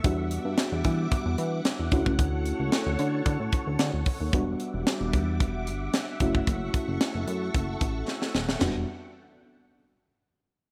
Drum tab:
CC |----------------|----------------|----------------|----------------|
HH |x-x-x-x-x-x-x-x-|x-x-x-x-x-x-x-o-|x-x-x-x-x-x-x-x-|x-x-x-x-x-x-----|
SD |----o-------o---|----o-------o---|----o-------o---|----o-------oooo|
FT |----------------|----------------|----------------|----------------|
BD |o-----o-o-----oo|o-------o-o---o-|o-----o-o-----oo|o-o-----o-o-----|

CC |x---------------|
HH |----------------|
SD |o---------------|
FT |o---------------|
BD |----------------|